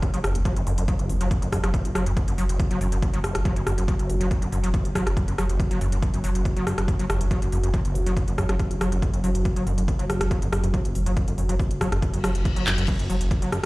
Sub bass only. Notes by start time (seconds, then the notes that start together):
0.14 F#1
0.24 F#1
0.35 F#1
0.67 F#1
0.78 F#1
0.99 F#1
1.10 F#1
1.21 F#1
1.42 F#1
1.64 F#1
1.85 F#1
1.95 F#1
2.06 F#1
2.38 F#1
2.49 F#1
2.71 F#1
2.81 F#1
2.92 F#1
3.13 F#1
3.35 F#1
3.56 F#1
3.67 F#1
3.78 F#1
4.10 F#1
4.21 F#1
4.42 F#1
4.52 F#1
4.64 F#1
4.85 F#1
5.06 F#1
5.28 F#1
5.38 F#1
5.49 F#1
5.81 F#1
5.92 F#1
6.14 F#1
6.24 F#1
6.35 F#1
6.56 F#1
6.78 F#1
6.99 F#1
7.09 F#1
7.21 F#1
7.52 F#1
7.63 F#1
7.85 F#1
7.95 F#1
8.06 F#1
8.28 F#1
8.49 F#1
8.71 F#1
8.81 F#1
8.92 F#1
9.24 F#1
9.35 F#1
9.56 F#1
9.67 F#1
9.78 F#1
9.99 F#1
10.21 F#1
10.42 F#1
10.52 F#1
10.63 F#1
10.95 F#1
11.06 F#1
11.28 F#1
11.38 F#1
11.49 F#1
11.71 F#1
11.92 F#1
12.14 F#1
12.24 F#1
12.35 F#1
12.67 F#1
12.78 F#1
12.99 F#1
13.10 F#1
13.21 F#1
13.42 F#1